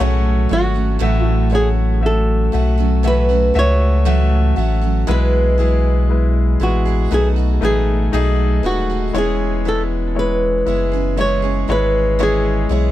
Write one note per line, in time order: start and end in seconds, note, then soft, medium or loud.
0.00 0.47 B1 medium
0.00 0.50 A2 medium
0.00 0.50 E3 medium
0.00 0.48 F#3 medium
0.00 0.50 A3 medium
0.00 0.49 A3 medium
0.00 0.50 C#4 medium
0.00 0.51 F#4 medium
0.00 0.52 G#4 loud
0.00 1.02 B4 medium
0.00 0.51 C#5 loud
0.49 0.98 G#1 loud
0.49 0.75 F#3 medium
0.49 0.98 A3 medium
0.49 0.75 A3 medium
0.49 0.74 C#4 medium
0.49 0.99 F#4 medium
0.49 0.73 F#4 medium
0.49 1.25 F#4 loud
0.49 0.99 C#5 medium
0.74 0.99 F#3 soft
0.74 0.99 A3 soft
0.74 0.99 C#4 soft
0.74 1.00 F#4 soft
0.99 2.49 A1 loud
0.99 1.51 A2 medium
0.99 2.50 A2 medium
0.99 1.51 E3 medium
0.99 1.49 F#3 medium
0.99 1.50 A3 medium
0.99 1.49 A3 medium
0.99 1.51 C#4 medium
0.99 1.52 F#4 medium
0.99 1.50 F#4 medium
0.99 1.50 E5 loud
1.25 1.54 E4 loud
1.50 2.51 F#3 medium
1.50 2.52 A3 medium
1.50 1.99 A3 medium
1.50 2.53 C#4 medium
1.50 2.00 F#4 medium
1.50 2.54 F#4 medium
1.50 2.01 C#5 medium
1.55 1.68 G#4 medium
2.01 2.50 A3 medium
2.01 2.51 F#4 medium
2.01 2.51 E5 medium
2.06 3.07 A4 medium
2.52 3.51 B1 loud
2.52 2.78 F#3 medium
2.52 3.01 A3 medium
2.52 2.78 A3 medium
2.52 2.77 C#4 medium
2.52 3.02 F#4 medium
2.52 2.76 F#4 medium
2.52 3.02 E5 medium
2.78 3.03 F#3 soft
2.78 3.03 A3 soft
2.78 3.03 C#4 soft
2.78 3.04 F#4 medium
3.03 3.29 A2 medium
3.03 3.29 E3 medium
3.03 3.30 F#3 medium
3.03 3.52 A3 medium
3.03 3.30 A3 medium
3.03 3.29 C#4 medium
3.03 3.53 F#4 medium
3.03 3.28 F#4 medium
3.03 3.53 E5 medium
3.07 3.58 B4 loud
3.29 3.53 F#3 soft
3.29 3.54 A3 soft
3.29 3.55 C#4 soft
3.29 3.55 F#4 medium
3.54 4.53 C#2 loud
3.54 4.05 F#3 medium
3.54 4.03 A3 medium
3.54 4.05 A3 medium
3.54 4.05 C#4 medium
3.54 4.03 F#4 medium
3.54 4.06 F#4 medium
3.54 4.04 E5 loud
3.59 5.06 C#5 loud
4.05 4.56 A2 medium
4.05 4.57 E3 medium
4.05 4.55 F#3 medium
4.05 4.54 A3 loud
4.05 4.56 A3 medium
4.05 4.57 C#4 medium
4.05 4.54 F#4 medium
4.05 4.57 F#4 medium
4.05 4.54 E5 loud
4.55 5.04 A1 medium
4.55 4.82 F#3 medium
4.55 5.04 A3 medium
4.55 4.82 A3 medium
4.55 4.81 C#4 medium
4.55 5.05 F#4 medium
4.55 4.80 F#4 medium
4.55 5.05 E5 medium
4.81 5.07 F#3 soft
4.81 5.07 A3 soft
4.81 5.08 C#4 soft
4.81 5.07 F#4 soft
5.07 6.57 B1 loud
5.07 5.58 B2 medium
5.07 6.56 B2 medium
5.07 5.57 E3 medium
5.07 5.56 G#3 medium
5.07 5.58 B3 medium
5.07 5.56 E4 medium
5.07 5.59 E4 medium
5.07 5.59 G#4 medium
5.07 5.56 B4 loud
5.07 6.58 B4 medium
5.58 6.58 E3 medium
5.58 6.07 G#3 medium
5.58 6.61 B3 medium
5.58 6.07 E4 medium
5.58 6.60 E4 medium
5.58 6.07 G#4 medium
5.58 6.61 G#4 medium
6.09 6.58 G#3 medium
6.09 6.58 E4 medium
6.09 6.58 B4 medium
6.60 7.08 A1 medium
6.60 6.85 E3 medium
6.60 7.09 G#3 medium
6.60 6.86 B3 medium
6.60 7.09 E4 medium
6.60 6.86 E4 medium
6.60 7.09 F#4 medium
6.60 6.84 G#4 medium
6.60 7.09 B4 medium
6.85 7.12 B3 soft
6.85 7.12 E4 soft
6.85 7.11 G#4 medium
7.10 7.59 B1 loud
7.10 7.36 B2 medium
7.10 8.60 B2 medium
7.10 7.37 F#3 medium
7.10 7.59 A3 medium
7.10 7.37 A3 medium
7.10 7.59 D#4 medium
7.10 7.37 D#4 medium
7.10 7.35 F#4 medium
7.10 7.27 G#4 medium
7.10 7.60 B4 medium
7.36 7.62 A3 soft
7.36 7.63 D#4 soft
7.36 7.62 F#4 soft
7.61 8.09 A1 medium
7.61 8.12 F#3 medium
7.61 8.10 A3 medium
7.61 8.13 A3 medium
7.61 8.10 D#4 medium
7.61 8.13 D#4 medium
7.61 8.14 F#4 medium
7.61 8.66 G#4 medium
7.61 8.11 B4 medium
8.12 8.60 B1 medium
8.12 8.64 B2 medium
8.12 8.62 F#3 medium
8.12 8.61 A3 medium
8.12 8.63 A3 medium
8.12 8.61 D#4 medium
8.12 8.64 D#4 medium
8.12 8.65 F#4 medium
8.12 8.62 G#4 loud
8.63 9.11 D#1 medium
8.63 8.89 F#3 medium
8.63 9.12 A3 medium
8.63 8.89 A3 medium
8.63 9.12 D#4 medium
8.63 8.90 D#4 medium
8.63 8.88 F#4 medium
8.63 9.17 F#4 medium
8.63 9.12 B4 medium
8.90 9.15 A3 soft
8.90 9.15 D#4 soft
8.90 9.15 F#4 soft
9.13 10.63 E1 loud
9.13 10.63 E3 medium
9.13 9.64 E3 medium
9.13 9.62 G#3 medium
9.13 9.65 B3 medium
9.13 9.66 C#4 medium
9.13 9.62 E4 medium
9.13 9.66 G#4 medium
9.13 9.63 C#5 loud
9.18 9.68 G#4 medium
9.65 10.66 E3 medium
9.65 10.13 B3 medium
9.65 10.67 B3 medium
9.65 10.68 C#4 medium
9.65 10.14 E4 medium
9.65 9.82 A4 medium
9.65 10.14 B4 medium
10.15 10.64 G#3 medium
10.15 10.64 E4 medium
10.15 10.64 C#5 medium
10.19 11.15 B4 medium
10.66 11.65 F#1 medium
10.66 10.92 E3 medium
10.66 11.15 G#3 medium
10.66 10.93 B3 medium
10.66 10.92 C#4 medium
10.66 11.15 E4 medium
10.66 10.90 G#4 medium
10.66 11.15 E5 medium
10.92 11.17 B3 soft
10.92 11.17 C#4 soft
10.92 11.17 G#4 soft
11.17 11.43 E3 medium
11.17 11.66 G#3 medium
11.17 11.43 B3 medium
11.17 11.43 C#4 medium
11.17 11.66 E4 medium
11.17 11.41 G#4 medium
11.17 11.66 C#5 medium
11.21 11.71 C#5 medium
11.42 11.67 B3 soft
11.42 11.68 C#4 soft
11.42 11.68 G#4 medium
11.68 12.66 G#1 medium
11.68 12.18 E3 soft
11.68 12.17 G#3 medium
11.68 12.18 B3 medium
11.68 12.19 C#4 medium
11.68 12.17 E4 medium
11.68 12.19 G#4 medium
11.68 12.22 B4 medium
11.68 12.18 C#5 loud
12.19 12.68 E3 medium
12.19 12.68 G#3 medium
12.19 12.69 B3 medium
12.19 12.70 C#4 medium
12.19 12.68 E4 medium
12.19 12.71 G#4 medium
12.19 12.91 G#4 medium
12.19 12.68 C#5 loud
12.69 12.91 B1 medium
12.69 12.91 E3 medium
12.69 12.91 G#3 medium
12.69 12.91 B3 medium
12.69 12.91 C#4 medium
12.69 12.91 E4 medium
12.69 12.91 G#4 medium
12.69 12.91 C#5 medium